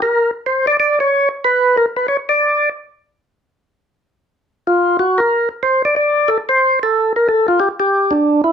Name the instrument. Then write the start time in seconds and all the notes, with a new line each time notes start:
tonewheel organ
0.02 A#4
0.46 C5
0.67 D5
0.80 D5
1.00 C#5
1.44 B4
1.77 A#4
1.96 B4
2.08 C#5
2.29 D5
4.67 F4
4.99 F#4
5.18 A#4
5.63 C5
5.85 D5
5.96 D5
6.28 A4
6.49 C5
6.83 A4
7.16 A#4
7.29 A4
7.48 F4
7.60 G4
7.80 G4
8.11 D4
8.44 E4